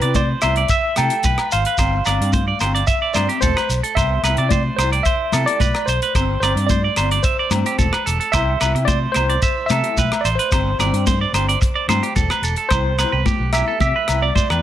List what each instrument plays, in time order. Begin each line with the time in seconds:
Already playing: tine electric piano B4
0.02 fingered electric bass C3, clean electric guitar E4 G4 D5, closed hi-hat
0.15 clean electric guitar C5, tine electric piano D5, kick, closed hi-hat, high conga, shekere
0.42 fingered electric bass C2, clean electric guitar B3 E4 G4 C5, tine electric piano E5, cross-stick, closed hi-hat, muted conga, low agogo, shekere
0.56 clean electric guitar D5, closed hi-hat
0.68 tine electric piano E5, clean electric guitar E5, kick, closed hi-hat, muted conga, shekere
0.96 fingered electric bass C3, clean electric guitar E4 G4 A4, tine electric piano G5, cross-stick, closed hi-hat, high conga, low agogo, shekere
1.10 clean electric guitar G4, closed hi-hat
1.23 fingered electric bass B1, clean electric guitar B4, kick, closed hi-hat, high conga, shekere
1.38 cross-stick, low agogo
1.51 fingered electric bass G#1, clean electric guitar C5, tine electric piano F5, closed hi-hat, shekere
1.65 clean electric guitar B4, closed hi-hat
1.78 fingered electric bass G1, clean electric guitar G3 C4 D4 G4 C5, kick, cross-stick, closed hi-hat, muted conga, low agogo, shekere
2.05 fingered electric bass G1, clean electric guitar C4 D4 G4 D5, cross-stick, closed hi-hat, muted conga, low agogo, shekere
2.20 fingered electric bass G2, clean electric guitar C4 D4 G4, closed hi-hat
2.33 clean electric guitar C5, kick, closed hi-hat, high conga, shekere
2.48 clean electric guitar D5
2.60 fingered electric bass G1, clean electric guitar C4 D4 G4 C5, cross-stick, closed hi-hat, muted conga, low agogo, shekere
2.75 clean electric guitar D5, closed hi-hat
2.87 tine electric piano E5, clean electric guitar E5, kick, closed hi-hat, muted conga, shekere
3.02 clean electric guitar D5
3.14 fingered electric bass G2, clean electric guitar G3 C4 G4 C5, tine electric piano D5, cross-stick, closed hi-hat, high conga, low agogo, shekere
3.29 clean electric guitar C4 D4 G4, closed hi-hat
3.41 fingered electric bass E1, clean electric guitar A4, tine electric piano C5, kick, closed hi-hat, high conga, shekere
3.57 clean electric guitar B4, cross-stick, low agogo
3.69 fingered electric bass B1, closed hi-hat, shekere
3.83 clean electric guitar A4, closed hi-hat
3.95 fingered electric bass C2, clean electric guitar B3 C5, tine electric piano E5, muted clean electric guitar stroke, kick, cross-stick, closed hi-hat, muted conga, low agogo, shekere
4.00 clean electric guitar G4
4.23 fingered electric bass C2, clean electric guitar B3 E4 B4, cross-stick, closed hi-hat, muted conga, low agogo, shekere
4.28 clean electric guitar G4
4.37 fingered electric bass C3, clean electric guitar G4 D5, closed hi-hat
4.42 clean electric guitar E4
4.49 clean electric guitar C5, tine electric piano D5, kick, closed hi-hat, high conga, shekere
4.76 fingered electric bass C2, tine electric piano C5, clean electric guitar C5, muted clean electric guitar stroke, cross-stick, closed hi-hat, muted conga, low agogo, shekere
4.81 clean electric guitar E4 G4
4.92 clean electric guitar D5, closed hi-hat
5.03 clean electric guitar C5, tine electric piano E5, kick, closed hi-hat, muted conga, shekere
5.32 fingered electric bass C3, clean electric guitar B3 E4 G4 A4, cross-stick, closed hi-hat, high conga, low agogo, shekere
5.46 clean electric guitar E4 G4, tine electric piano D5, closed hi-hat
5.60 fingered electric bass B1, clean electric guitar B4, kick, closed hi-hat, high conga, shekere
5.74 cross-stick, low agogo
5.86 fingered electric bass B1, tine electric piano C5, clean electric guitar C5, closed hi-hat, shekere
6.02 clean electric guitar B4, closed hi-hat
6.15 fingered electric bass G1, clean electric guitar G3 C4 D4 G4 C5, kick, cross-stick, closed hi-hat, muted conga, low agogo, shekere
6.40 fingered electric bass G1, clean electric guitar C4 D5, tine electric piano C5, muted clean electric guitar stroke, cross-stick, closed hi-hat, muted conga, low agogo, shekere
6.45 clean electric guitar D4 G4
6.56 fingered electric bass G2, clean electric guitar C4 D4 G4, closed hi-hat
6.67 clean electric guitar C5, tine electric piano D5, kick, closed hi-hat, high conga, shekere
6.84 clean electric guitar D5
6.96 fingered electric bass G1, clean electric guitar G3 C4 D4 C5, muted clean electric guitar stroke, cross-stick, closed hi-hat, muted conga, low agogo, shekere
7.11 clean electric guitar D5, closed hi-hat
7.23 tine electric piano C5, clean electric guitar E5, kick, closed hi-hat, muted conga, shekere
7.39 clean electric guitar D5
7.51 fingered electric bass G2, clean electric guitar G3 C4 D4 G4, muted clean electric guitar stroke, cross-stick, closed hi-hat, high conga, low agogo, shekere
7.64 clean electric guitar C4 D4 G4, closed hi-hat
7.79 fingered electric bass E1, clean electric guitar A4, kick, closed hi-hat, high conga, shekere
7.93 clean electric guitar B4, cross-stick, low agogo
8.06 fingered electric bass E1, clean electric guitar A4, closed hi-hat, shekere
8.20 clean electric guitar A4, closed hi-hat
8.32 fingered electric bass C2, clean electric guitar B3 E4 G4 C5, tine electric piano E5, kick, cross-stick, closed hi-hat, muted conga, low agogo, shekere
8.61 fingered electric bass C2, clean electric guitar B3 E4 G4 B4, cross-stick, closed hi-hat, muted conga, low agogo, shekere
8.75 fingered electric bass C3, clean electric guitar E4 G4, muted clean electric guitar stroke, closed hi-hat
8.85 clean electric guitar C5, tine electric piano D5, kick, closed hi-hat, high conga, shekere
9.12 clean electric guitar B3 C5, tine electric piano C5, cross-stick, closed hi-hat, muted conga, shekere
9.16 fingered electric bass C2, clean electric guitar E4 G4, low agogo
9.29 clean electric guitar D5, closed hi-hat
9.42 clean electric guitar E5, kick, closed hi-hat, muted conga, shekere
9.66 clean electric guitar B3, tine electric piano E5, high conga, shekere
9.70 fingered electric bass C3, clean electric guitar G4 A4, muted clean electric guitar stroke, cross-stick, closed hi-hat, low agogo
9.83 clean electric guitar E4 G4, closed hi-hat
9.97 fingered electric bass B1, clean electric guitar B4, kick, closed hi-hat, high conga, shekere
10.12 cross-stick, low agogo
10.21 fingered electric bass A1, tine electric piano D5
10.25 clean electric guitar C5, closed hi-hat, shekere
10.35 clean electric guitar B4, tine electric piano C5, closed hi-hat
10.51 fingered electric bass G1, clean electric guitar G3 C4 D4 G4 C5, kick, cross-stick, closed hi-hat, muted conga, low agogo, shekere
10.78 fingered electric bass G1, clean electric guitar G3 C4 D4 G4 D5, cross-stick, closed hi-hat, low conga, low agogo, shekere
10.92 fingered electric bass G2, clean electric guitar C4 D4 G4, closed hi-hat
11.07 clean electric guitar C5, kick, closed hi-hat, high conga, shekere
11.21 clean electric guitar D5
11.33 fingered electric bass G1, clean electric guitar C4 D4 G4 C5, muted clean electric guitar stroke, cross-stick, closed hi-hat, muted conga, low agogo, shekere
11.49 clean electric guitar D5, closed hi-hat
11.61 muted clean electric guitar stroke, kick, closed hi-hat, muted conga, shekere
11.75 clean electric guitar D5
11.87 fingered electric bass G2, clean electric guitar G3 C4 D4 G4 C5, cross-stick, closed hi-hat, high conga, low agogo, shekere
12.03 clean electric guitar D4 G4, closed hi-hat
12.16 fingered electric bass E1, clean electric guitar A4, kick, closed hi-hat, high conga, shekere
12.30 clean electric guitar B4, cross-stick, low agogo
12.42 fingered electric bass E1, clean electric guitar A4, closed hi-hat, shekere
12.56 clean electric guitar A4, closed hi-hat
12.69 fingered electric bass C2, clean electric guitar G3 B3 E4 G4 C5, tine electric piano C5, kick, cross-stick, muted conga, low agogo, shekere
12.99 clean electric guitar G3 B3 E4 G4 B4, cross-stick, closed hi-hat, muted conga, low agogo, shekere
13.12 fingered electric bass C2, clean electric guitar B3 B4, muted clean electric guitar stroke
13.26 clean electric guitar G4, kick, high conga, shekere
13.40 fingered electric bass B1
13.52 clean electric guitar G3 B3 E4 G4, tine electric piano E5, cross-stick, closed hi-hat, low agogo, shekere
13.68 clean electric guitar A4
13.80 fingered electric bass C3, clean electric guitar G4, tine electric piano E5, kick, muted conga, high conga, shekere
13.96 clean electric guitar B4
14.08 fingered electric bass C2, clean electric guitar G3 B3 E4 G4, cross-stick, closed hi-hat, low agogo, shekere
14.22 tine electric piano D5, clean electric guitar D5
14.35 clean electric guitar C5, kick, high conga, shekere
14.50 fingered electric bass E2, clean electric guitar B3 E4 G4 B4, cross-stick, low agogo